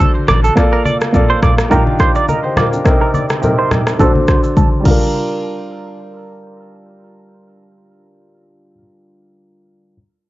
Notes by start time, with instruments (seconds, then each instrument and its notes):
Already playing: grand piano D3 D4 F#4 C5
0.00 clean electric guitar A4, kick, high conga, shaker
0.28 sub bass A1, clean electric guitar D5, cross-stick, high conga, low conga, shaker
0.44 clean electric guitar A4, shaker
0.56 grand piano A#3 F4 A4 D5, kick, cross-stick, shaker
0.73 clean electric guitar A#4
0.85 clean electric guitar D5, high conga, shaker
1.01 cross-stick, shaker
1.13 grand piano A#3 F4 A4 D5, kick, low conga, shaker
1.30 clean electric guitar C5
1.43 clean electric guitar D5, kick, cross-stick, low conga, shaker
1.58 cross-stick, shaker
1.70 grand piano D#3 D4 F4 G4, clean electric guitar A#4, kick, low conga, shaker
1.87 high conga
1.99 clean electric guitar C5, kick, cross-stick, shaker
2.15 clean electric guitar D5, shaker
2.28 clean electric guitar A#4, grand piano A#4 D#5, high conga, shaker
2.44 grand piano G4 C5
2.57 grand piano F4 A#4, clean electric guitar D5, cross-stick, high conga, low conga, shaker
2.73 grand piano D4 G4, shaker
2.84 grand piano C3 C4 D#4 A#4, kick, cross-stick, shaker
3.01 clean electric guitar A#4
3.14 clean electric guitar D5, high conga, shaker
3.30 cross-stick, shaker
3.41 grand piano C3 C4 D#4 A#4, low conga, shaker
3.58 clean electric guitar C5
3.71 clean electric guitar D5, cross-stick, low conga, shaker
3.87 cross-stick, shaker
3.98 grand piano D3 D4 F#4 C5, clean electric guitar A4, kick, low conga, shaker
4.15 high conga
4.28 clean electric guitar C5, kick, cross-stick, shaker
4.44 shaker
4.57 clean electric guitar A4, kick, high tom, high conga, shaker
4.80 grand piano G3 D4
4.85 grand piano F4, clean electric guitar A#4, kick, crash, high conga
4.90 grand piano A#4